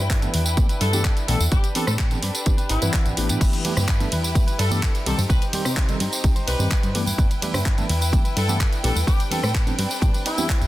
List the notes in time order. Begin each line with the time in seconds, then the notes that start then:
Already playing: E4 B4 G5
0.00 G2
0.10 G3 D4 E4 B4, kick, clap, closed hi-hat, tambourine
0.22 E3 A3 B3 D4 A4, closed hi-hat, tambourine
0.33 E2 G3 D4 E4 B4, open hi-hat
0.45 D4 E4 B4, tambourine
0.57 G1 E3 A3 B3 D4 G4, kick, closed hi-hat, tambourine
0.69 D4 E4 B4, closed hi-hat, tambourine
0.81 G2 G3 D4 E4 A4 B4, open hi-hat
0.92 E3 A3 B3 D4 E4 G4 B4, tambourine
1.04 G3 D4 E4 B4, kick, clap, closed hi-hat, tambourine
1.17 closed hi-hat, tambourine
1.27 B1 E3 G3 A3 B3 D4 E4 G4 A4 B4, open hi-hat
1.39 E2 D4 E4 B4, tambourine
1.51 A1 C4 D4 G4 B4, kick, closed hi-hat, tambourine
1.63 D4 G4 B4, closed hi-hat, tambourine
1.75 E3 B3 C4 D4 G4 A4 B4, open hi-hat
1.87 A2 A4, cross-stick, tambourine
1.98 C4 D4 G4 B4, kick, clap, closed hi-hat, tambourine
2.11 E3 B3 C4 D4 A4, closed hi-hat, tambourine
2.22 G2 C4 D4 G4 B4, open hi-hat
2.34 D4 G4 B4, closed hi-hat, tambourine
2.46 A1 E3 B3 C4 D4 G4, kick, closed hi-hat, tambourine
2.57 D4 G4 B4, closed hi-hat, tambourine
2.69 A1 C4 D4 E4 G4 B4, open hi-hat
2.82 G2 E3 C4 D4 G4 B4 F#5, closed hi-hat, tambourine
2.93 C4 D4 G4 B4, kick, clap, closed hi-hat, tambourine
3.06 A1, closed hi-hat, tambourine
3.16 A1 E3 A3 B3 C4 D4 G4 B4, open hi-hat
3.29 A2 D4 G4 B4, closed hi-hat, tambourine
3.41 G1 D4 E4 B4, kick, closed hi-hat, crash, tambourine, low conga
3.52 E4 B4, closed hi-hat, tambourine
3.64 E3 A3 B3 D4 E4 G4 B4, open hi-hat, ride, high conga
3.77 G2, cross-stick, tambourine, low conga
3.88 D4 E4 B4, kick, clap, closed hi-hat, tambourine
4.00 E3 A3 B3 D4 A4, closed hi-hat, tambourine, high conga
4.11 E2 D4 E4 B4, open hi-hat, ride
4.23 E4 B4, tambourine
4.35 G1 E3 A3 B3 D4 G4, kick, closed hi-hat, tambourine, high conga
4.47 E4 B4, closed hi-hat, tambourine
4.59 G2 D4 E4 A4 B4, open hi-hat, ride
4.70 E3 A3 B3 D4 E4 G4 B4, tambourine, high conga
4.82 D4 E4 B4, kick, clap, closed hi-hat, tambourine
4.95 closed hi-hat, tambourine
5.06 C2 D#3 G3 C4 D#4 G4 A4 C5, open hi-hat, ride
5.18 G2 D#4 G4 C5, tambourine, high conga
5.29 C2 G3 D#4 G4 B4 C5, kick, closed hi-hat, tambourine
5.41 D#4 G4 C5, closed hi-hat, tambourine
5.53 D#3 G3 C4 D#4 G4 C5, open hi-hat, ride, high conga
5.65 C3, cross-stick, tambourine
5.76 G3 G4 C5, kick, clap, closed hi-hat, tambourine
5.89 D#3 G3 C4 D#4 A4, closed hi-hat, tambourine, high conga
6.00 G2 G3 D#4 G4 C5, open hi-hat, ride
6.12 D#4 G4 C5, tambourine
6.24 C2 D#3 G3 C4 D#4 G4, kick, closed hi-hat, tambourine, high conga
6.36 D#4 G4 C5, closed hi-hat, tambourine
6.47 C2 G3 D#4 G4 B4 C5, open hi-hat, ride
6.59 G2 D#3 G3 C4 D#4 G4 C5, tambourine, high conga
6.71 D#4 G4 C5, kick, clap, closed hi-hat, tambourine
6.83 G2, closed hi-hat, tambourine
6.94 E3 A3 B3 D4 E4 G4 B4 G5, open hi-hat, ride
7.06 E4 B4, tambourine, high conga
7.18 G1 D4 B4, kick, closed hi-hat, tambourine, low conga
7.30 E4 B4, closed hi-hat, tambourine
7.42 E3 A3 B3 D4 E4 G4 B4, open hi-hat, ride, high conga
7.53 G2, cross-stick, tambourine, low conga
7.65 D4 E4 B4, kick, clap, closed hi-hat
7.77 E3 A3 B3 D4 A4, closed hi-hat, tambourine, high conga
7.89 E2 D4 E4 B4, open hi-hat, ride
8.01 E4 B4, tambourine
8.12 G1 E3 A3 B3 D4 G4, kick, closed hi-hat, tambourine, high conga
8.24 E4 B4, closed hi-hat, tambourine
8.36 G2 D4 E4 A4 B4, open hi-hat, ride
8.48 E3 A3 B3 D4 E4 G4 B4, tambourine, high conga
8.60 D4 E4 B4, kick, clap, closed hi-hat, tambourine
8.72 closed hi-hat, tambourine
8.83 B1 E3 A3 B3 D4 E4 G4 A4 B4, open hi-hat, ride
8.95 E2 E4 B4, tambourine, high conga
9.07 A1 C4 D4 G4 B4, kick, closed hi-hat, tambourine
9.18 B4, closed hi-hat, tambourine
9.20 D4 G4, tambourine
9.31 E3 B3 C4 D4 G4 A4 B4, open hi-hat, ride, high conga
9.43 A2 A4, cross-stick, tambourine
9.54 C4 D4 G4 B4, kick, clap, closed hi-hat, tambourine
9.66 E3 B3 C4 D4 A4, closed hi-hat, tambourine, high conga
9.78 G2 C4 D4 G4 B4, open hi-hat, ride
9.90 D4 G4 B4, tambourine
10.01 A2 E3 B3 C4 D4 G4, kick, closed hi-hat, tambourine, high conga
10.13 D4 G4 B4, closed hi-hat, tambourine
10.25 C4 D4 E4 G4 B4, open hi-hat, ride
10.37 E3 B3 C4 D4 G4 B4, tambourine, high conga
10.49 C4 D4, kick, clap, closed hi-hat, tambourine
10.61 E2, closed hi-hat, tambourine